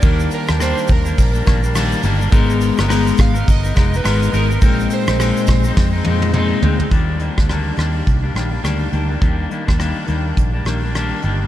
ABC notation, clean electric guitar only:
X:1
M:4/4
L:1/16
Q:"Swing 16ths" 1/4=104
K:Eb
V:1 name="Clean electric guitar"
[E,G,B,D]3 [G,B,D] [E,G,B,D]3 [G,B,D]2 [G,B,D] [E,G,B,D] [G,B,D] [E,G,B,D]2 [E,G,B,D] [G,B,D] | [A,_CEB]3 [CEB] [A,CEB]3 [CEB]2 [CEB] [A,CEB] [CEB] [A,CEB]2 [A,CEB] [CEB] | [B,,A,CE]3 [A,CE] [B,,A,CE]3 [A,CE]2 [A,CE] [B,,A,CE]2 [B,,A,CE]2 [B,,A,CE] [A,CE] | [E,G,B,D]2 [E,G,B,D] [G,B,D] [E,G,B,D]2 [E,G,B,D]3 [G,B,D] [E,G,B,D] [G,B,D] [E,G,B,D]2 [E,G,B,D] [G,B,D] |
[E,G,B,D]2 [E,G,B,D] [G,B,D] [E,G,B,D]2 [E,G,B,D]3 [G,B,D] [E,G,B,D] [G,B,D] [E,G,B,D]2 [E,G,B,D] [G,B,D] |]